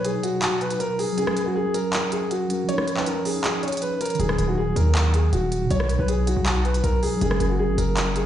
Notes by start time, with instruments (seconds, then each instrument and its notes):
Already playing: tine electric piano B2 F#3 D#4
0.05 grand piano G#4, closed hi-hat
0.23 grand piano F#4, closed hi-hat
0.42 grand piano F#4, clap, closed hi-hat
0.61 grand piano B4, closed hi-hat
0.70 closed hi-hat
0.80 grand piano A#4, closed hi-hat
0.99 grand piano G#4, open hi-hat
1.13 tine electric piano F#3
1.18 tine electric piano C#4, grand piano G#4, closed hi-hat
1.22 tine electric piano A#4
1.27 cross-stick
1.37 closed hi-hat
1.46 grand piano F#4
1.55 grand piano G#4
1.74 grand piano A#4, closed hi-hat
1.93 clap, closed hi-hat
2.12 grand piano G#4, closed hi-hat
2.31 grand piano F#4, closed hi-hat
2.48 tine electric piano F#3 C#4, closed hi-hat
2.53 tine electric piano A#4
2.64 tine electric piano F3
2.69 tine electric piano C#4, grand piano C#5, closed hi-hat
2.74 tine electric piano D#4
2.78 cross-stick
2.88 closed hi-hat
2.97 grand piano B4, clap
3.06 grand piano A#4, closed hi-hat
3.25 grand piano G#4, open hi-hat
3.44 grand piano G#4, clap, closed hi-hat
3.63 grand piano C#5, closed hi-hat
3.68 closed hi-hat
3.72 closed hi-hat
3.77 closed hi-hat
3.82 grand piano B4, closed hi-hat
4.01 grand piano A#4, closed hi-hat
4.05 closed hi-hat
4.10 closed hi-hat
4.15 tine electric piano D#3, closed hi-hat
4.20 808-style bass D#1, tine electric piano F#3, grand piano G#4, closed hi-hat
4.24 tine electric piano D#4
4.29 cross-stick
4.38 808-style bass D#1, closed hi-hat
4.48 grand piano F#4
4.57 grand piano G#4
4.76 808-style bass D#2, grand piano A#4, closed hi-hat
4.95 clap, closed hi-hat
5.14 grand piano G#4, closed hi-hat
5.33 808-style bass D#1, grand piano F#4, closed hi-hat
5.52 closed hi-hat
5.66 tine electric piano B2
5.70 808-style bass B1, tine electric piano F#3, grand piano C#5, closed hi-hat
5.75 tine electric piano D#4
5.80 cross-stick
5.89 closed hi-hat
5.99 808-style bass B1, grand piano B4
6.08 grand piano G#4, closed hi-hat
6.27 grand piano F#4, closed hi-hat
6.37 808-style bass B1
6.46 grand piano F#4, clap, closed hi-hat
6.65 grand piano B4, closed hi-hat
6.74 closed hi-hat
6.84 808-style bass B1, grand piano A#4, closed hi-hat
7.03 grand piano G#4, open hi-hat
7.16 tine electric piano F#3
7.21 808-style bass F#1, tine electric piano C#4, grand piano G#4, closed hi-hat
7.26 tine electric piano A#4
7.31 cross-stick
7.40 808-style bass F#1, closed hi-hat
7.50 grand piano F#4
7.59 grand piano G#4
7.69 808-style bass G#1
7.78 808-style bass F#1, grand piano A#4, closed hi-hat
7.97 clap, closed hi-hat
8.16 grand piano G#4, closed hi-hat